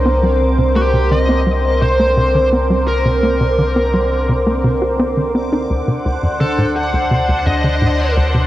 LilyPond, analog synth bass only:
\new Staff \with { instrumentName = "Analog synth bass" } { \clef bass \time 4/4 \key c \dorian \tempo 4 = 85 c'16 g16 r16 c16 bes16 c16 ees16 c'16 g16 r16 c16 bes16 c16 ees16 c'16 g16 | r16 c16 bes16 c16 ees16 c'16 g16 r16 c16 bes16 c16 g'16 c'16 ees16 c'16 ees'16 | d,16 c16 d,16 fis,16 d16 a,16 r16 d,16 c16 d,16 fis,16 d16 a,16 r16 d,16 c16 | }